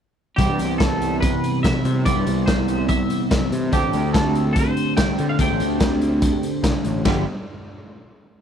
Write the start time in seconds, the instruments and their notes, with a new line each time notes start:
0.36 picked electric bass C2, clean electric guitar C3 E3 G3 B3 G4, kick, closed hi-hat
0.49 picked electric bass G2
0.59 picked electric bass C2, closed hi-hat
0.78 clean electric guitar A4, kick, snare, closed hi-hat
1.02 closed hi-hat
1.20 clean electric guitar B4, kick, closed hi-hat
1.44 closed hi-hat
1.63 picked electric bass B1, clean electric guitar E5, kick, snare, closed hi-hat
1.85 picked electric bass C3, closed hi-hat
2.05 picked electric bass C2, clean electric guitar C3 E3 G3 B3 G4 D5, kick, closed hi-hat
2.16 picked electric bass G2
2.26 picked electric bass C2, closed hi-hat
2.46 clean electric guitar C5, kick, snare, closed hi-hat
2.68 closed hi-hat
2.88 clean electric guitar E5, kick, closed hi-hat
3.10 closed hi-hat
3.31 picked electric bass B1, kick, snare, closed hi-hat
3.52 picked electric bass C3, closed hi-hat
3.72 picked electric bass D2, clean electric guitar D3 A3 C4 G4, kick, closed hi-hat
3.83 picked electric bass A1
3.93 picked electric bass D2, closed hi-hat
4.13 clean electric guitar A4, kick, snare, closed hi-hat
4.35 closed hi-hat
4.53 clean electric guitar C5, kick, closed hi-hat
4.77 closed hi-hat
4.97 picked electric bass C2, clean electric guitar G5, kick, snare, closed hi-hat
5.18 picked electric bass D3, closed hi-hat
5.29 clean electric guitar F5
5.39 picked electric bass D2, clean electric guitar D3 A3 C4 G4 G5, kick, closed hi-hat
5.51 picked electric bass A1
5.60 picked electric bass D2, closed hi-hat
5.80 kick, snare, closed hi-hat
6.01 closed hi-hat
6.22 kick, closed hi-hat
6.43 closed hi-hat
6.63 picked electric bass C2, kick, snare, closed hi-hat
6.84 picked electric bass A1, closed hi-hat
7.05 picked electric bass G1, clean electric guitar G2 D3 F3 G3 B3 G4, kick, snare, ride bell